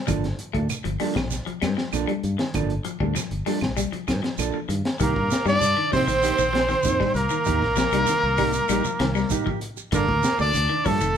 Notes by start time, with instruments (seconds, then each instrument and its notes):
0.07 fingered electric bass G1, clean electric guitar F3 A#3 D4 A4, kick, closed hi-hat, claves, shekere
0.24 snare, closed hi-hat
0.38 muted clean electric guitar stroke, closed hi-hat, shekere
0.53 fingered electric bass D2, clean electric guitar A3 A#3 D4 A4, kick, closed hi-hat
0.69 muted clean electric guitar stroke, muted fingered electric bass stroke, closed hi-hat, claves, shekere
0.84 fingered electric bass G1, clean electric guitar F3, muted clean electric guitar stroke, closed hi-hat
1.00 clean electric guitar F3 G3 A#3 D4 A4, muted fingered electric bass stroke, open hi-hat, shekere
1.15 fingered electric bass A#1, clean electric guitar F3, muted clean electric guitar stroke, kick, snare, closed hi-hat, claves
1.31 snare, closed hi-hat, shekere
1.46 clean electric guitar F3, muted clean electric guitar stroke, muted fingered electric bass stroke, closed hi-hat
1.62 fingered electric bass G2, clean electric guitar G3, snare, closed hi-hat, claves, shekere
1.77 clean electric guitar F3, muted clean electric guitar stroke, snare
1.93 fingered electric bass A#1, clean electric guitar F3 A#3 D4 A4, closed hi-hat, claves, shekere
2.08 clean electric guitar G3, closed hi-hat
2.23 fingered electric bass G2, muted clean electric guitar stroke, closed hi-hat, shekere
2.38 clean electric guitar D#3, muted clean electric guitar stroke, snare, closed hi-hat
2.54 fingered electric bass G1, clean electric guitar F3 A#3 D4 A4, kick, closed hi-hat, claves, shekere
2.70 closed hi-hat
2.85 clean electric guitar F3, muted clean electric guitar stroke, closed hi-hat, shekere
3.00 fingered electric bass D2, clean electric guitar G3 A#3 D4 A4, kick
3.15 clean electric guitar F3, muted fingered electric bass stroke, muted clean electric guitar stroke, snare, closed hi-hat, claves, shekere
3.31 fingered electric bass G1, muted clean electric guitar stroke, closed hi-hat
3.46 clean electric guitar F3 G3 A#3 D4 A4, open hi-hat, shekere
3.61 fingered electric bass A#1, muted clean electric guitar stroke, kick, snare, closed hi-hat, claves
3.77 clean electric guitar G3, closed hi-hat, shekere
3.92 clean electric guitar F3, muted clean electric guitar stroke, muted fingered electric bass stroke, closed hi-hat
4.08 fingered electric bass G2, clean electric guitar D#3, kick, snare, closed hi-hat, claves, shekere
4.23 clean electric guitar F3, muted clean electric guitar stroke, snare, closed hi-hat
4.38 fingered electric bass A#1, clean electric guitar F3 A#3 D4 A4, closed hi-hat, claves, shekere
4.54 clean electric guitar F3
4.69 fingered electric bass G2, clean electric guitar D#3, muted clean electric guitar stroke, closed hi-hat, shekere
4.85 muted clean electric guitar stroke, snare, closed hi-hat
4.99 fingered electric bass C2, clean electric guitar D#3 A#3 D#4 G4, tenor saxophone A#3, trumpet A#4, kick, closed hi-hat, shekere
5.16 fingered electric bass G2, muted clean electric guitar stroke, kick
5.31 muted clean electric guitar stroke, snare, closed hi-hat, shekere
5.46 fingered electric bass G2, clean electric guitar G3 D#4 G4, tenor saxophone D4, trumpet D5, snare, shekere
5.61 fingered electric bass G2, muted clean electric guitar stroke, closed hi-hat, shekere
5.77 clean electric guitar D#3
5.92 fingered electric bass C3, clean electric guitar F3 A#3 D#4 G4, trumpet C5, kick, open hi-hat, shekere
5.96 tenor saxophone C4
6.07 fingered electric bass A#1, clean electric guitar D#3, muted clean electric guitar stroke, closed hi-hat, shekere
6.22 clean electric guitar A#3 D#4 G4, closed hi-hat, shekere
6.38 fingered electric bass A#1, clean electric guitar D#3, muted clean electric guitar stroke, shekere
6.53 clean electric guitar F3, muted clean electric guitar stroke, snare, closed hi-hat
6.69 clean electric guitar D#3, snare, shekere
6.83 fingered electric bass F2, clean electric guitar A#3 D#4, muted clean electric guitar stroke, kick, closed hi-hat, shekere
7.00 clean electric guitar G3 D#4 G4, kick, snare
7.14 fingered electric bass C2, tenor saxophone A#3, trumpet A#4, muted clean electric guitar stroke, closed hi-hat, shekere
7.30 clean electric guitar D#3, muted clean electric guitar stroke, shekere
7.45 fingered electric bass D#2, clean electric guitar A#3 D#4 G4, kick, closed hi-hat, shekere
7.62 fingered electric bass A#1, muted clean electric guitar stroke, kick, snare
7.76 clean electric guitar F3, muted clean electric guitar stroke, snare, closed hi-hat, shekere
7.92 fingered electric bass C2, clean electric guitar G3 D#4, closed hi-hat, shekere
8.06 clean electric guitar D#3, muted clean electric guitar stroke, snare, closed hi-hat, shekere
8.23 fingered electric bass C2
8.38 clean electric guitar G3 A#3 D#4 G4, kick, open hi-hat, shekere
8.53 muted clean electric guitar stroke, closed hi-hat, shekere
8.69 fingered electric bass A#1, clean electric guitar G3 A#3 D#4 G4, closed hi-hat, shekere
8.85 clean electric guitar F3, muted clean electric guitar stroke, muted fingered electric bass stroke, shekere
9.00 fingered electric bass C2, clean electric guitar D#3, muted clean electric guitar stroke, snare, closed hi-hat
9.15 clean electric guitar G3, snare, shekere
9.30 clean electric guitar A#3 D#4 G4, kick, closed hi-hat, shekere
9.46 clean electric guitar F3 G4, kick
9.61 muted clean electric guitar stroke, closed hi-hat, shekere
9.77 muted clean electric guitar stroke, shekere
9.92 fingered electric bass G1, clean electric guitar D3 A#3 D4 A4, tenor saxophone A#3, trumpet A#4, muted clean electric guitar stroke, kick, closed hi-hat, shekere
10.08 fingered electric bass D2, muted clean electric guitar stroke, kick
10.23 muted clean electric guitar stroke, snare, closed hi-hat, shekere
10.39 fingered electric bass D2, clean electric guitar A#3 D4 A4, tenor saxophone D4, trumpet D5, muted clean electric guitar stroke, shekere
10.54 fingered electric bass D2, muted clean electric guitar stroke, closed hi-hat, shekere
10.70 clean electric guitar D#3
10.85 fingered electric bass G2, clean electric guitar F3 A#3 D4 A4, tenor saxophone A3, trumpet A4, kick, open hi-hat, shekere
11.00 fingered electric bass F1, clean electric guitar D#3, muted clean electric guitar stroke, closed hi-hat, shekere